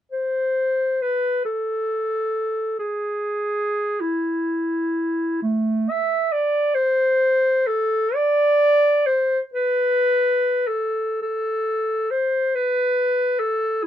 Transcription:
0.12 C5
1.02 B4
1.45 A4
2.79 G#4
4.01 E4
5.42 A3
5.90 E5
6.32 D5
6.74 C5
7.67 A4
8.15 D5
9.06 C5
9.54 B4
10.67 A4
11.22 A4
12.11 C5
12.55 B4
13.39 A4
13.83 E4

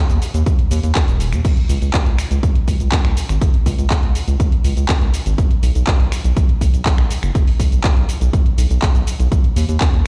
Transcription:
0.10 D#2, closed hi-hat, cabasa
0.22 open hi-hat, cabasa
0.34 D#2, closed hi-hat, cabasa
0.46 kick, closed hi-hat, cabasa
0.59 closed hi-hat
0.71 D#2, open hi-hat, cabasa
0.83 D#2, closed hi-hat, cabasa
0.95 kick, clap, closed hi-hat, cabasa
1.08 D#1, closed hi-hat, cabasa
1.20 open hi-hat, cabasa
1.32 D#2, finger snap, closed hi-hat, cabasa
1.45 kick, closed hi-hat, crash, cabasa
1.57 closed hi-hat
1.69 C#2, open hi-hat, cabasa
1.82 C#2, closed hi-hat, cabasa
1.94 kick, clap, closed hi-hat, cabasa
2.06 C#2, closed hi-hat
2.19 finger snap, open hi-hat, cabasa
2.31 C#2, closed hi-hat, cabasa
2.43 kick, closed hi-hat, cabasa
2.55 closed hi-hat
2.68 C#2, kick, open hi-hat, cabasa
2.80 C#2, closed hi-hat, cabasa
2.92 kick, clap, closed hi-hat, cabasa
3.05 C#2, finger snap, closed hi-hat
3.17 open hi-hat, cabasa
3.29 G#1, finger snap, closed hi-hat, cabasa
3.41 kick, closed hi-hat, cabasa
3.54 closed hi-hat
3.66 C#2, kick, open hi-hat, cabasa
3.78 C#2, closed hi-hat, cabasa
3.90 kick, clap, closed hi-hat, cabasa
4.03 C#2, closed hi-hat
4.15 open hi-hat, cabasa
4.28 C#2, closed hi-hat, cabasa
4.40 kick, closed hi-hat, cabasa
4.52 closed hi-hat
4.64 C#2, open hi-hat, cabasa
4.77 C#2, closed hi-hat, cabasa
4.89 kick, clap, closed hi-hat, cabasa
5.01 C#2, closed hi-hat
5.14 open hi-hat, cabasa
5.26 G#1, closed hi-hat, cabasa
5.38 kick, closed hi-hat, cabasa
5.51 closed hi-hat
5.63 B1, open hi-hat, cabasa
5.75 B1, closed hi-hat, cabasa
5.87 kick, clap, closed hi-hat, cabasa
6.00 B1, closed hi-hat
6.12 finger snap, open hi-hat, cabasa
6.24 B1, closed hi-hat, cabasa
6.37 kick, closed hi-hat, cabasa
6.49 closed hi-hat
6.61 B1, kick, open hi-hat, cabasa
6.74 B1, closed hi-hat, cabasa
6.86 kick, clap, closed hi-hat, cabasa
6.98 B1, finger snap, closed hi-hat
7.11 open hi-hat, cabasa
7.23 F#1, finger snap, closed hi-hat, cabasa
7.35 kick, closed hi-hat, cabasa
7.47 open hi-hat
7.60 B1, kick, open hi-hat, cabasa
7.72 B1, closed hi-hat, cabasa
7.84 kick, clap, closed hi-hat, cabasa
7.97 B1, closed hi-hat
8.09 open hi-hat, cabasa
8.21 B1, closed hi-hat, cabasa
8.33 kick, closed hi-hat, cabasa
8.46 closed hi-hat
8.58 B1, open hi-hat, cabasa
8.70 B1, closed hi-hat, cabasa
8.82 kick, clap, closed hi-hat, cabasa
8.95 B1, closed hi-hat, cabasa
9.07 open hi-hat, cabasa
9.20 B1, closed hi-hat, cabasa
9.32 kick, closed hi-hat, cabasa
9.44 closed hi-hat
9.56 D#2, open hi-hat, cabasa
9.69 D#2, closed hi-hat, cabasa
9.81 kick, clap, closed hi-hat, cabasa
9.93 D#2, closed hi-hat

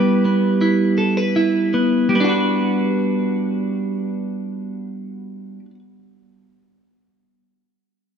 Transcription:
Already playing: G3 B3 E4 B4
0.25 B3
0.61 E4
0.98 A4
1.17 B4
1.36 E4
1.74 B3
2.09 G3
2.15 B3
2.20 D4 F#4
2.29 B4

